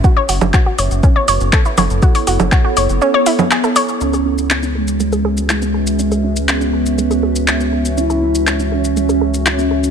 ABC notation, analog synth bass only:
X:1
M:4/4
L:1/16
Q:1/4=121
K:C#m
V:1 name="Analog synth bass" clef=bass
z2 F,,, F,,, z2 F,,, F,,, z2 F,,, F,,, z2 F,,, F,,, | z2 F,,, F,,, z2 F,,, F,,, z8 | C,,16- | C,,16- |
C,,16 |]